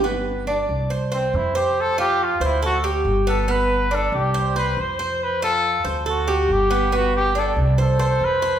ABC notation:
X:1
M:4/4
L:1/8
Q:1/4=140
K:G
V:1 name="Cuban tres"
B,2 D2 c c2 c- | c =F2 c A G2 B, | B,2 D2 c c2 c- | c =F2 c A G2 B, |
B,2 D2 c c2 c |]
V:2 name="Trumpet"
z4 z C E G | A G =F E ^F z2 A | B2 A G2 B c2 | B A2 z F2 G2 |
F G A z A2 B2 |]
V:3 name="Upright bass" clef=bass
G,,,3 C,,3 =F,,2- | =F,,3 D,,3 G,,,2- | G,,,3 C,,3 =F,,2- | =F,,3 D,,3 G,,,2- |
G,,,3 C,,3 =F,,2 |]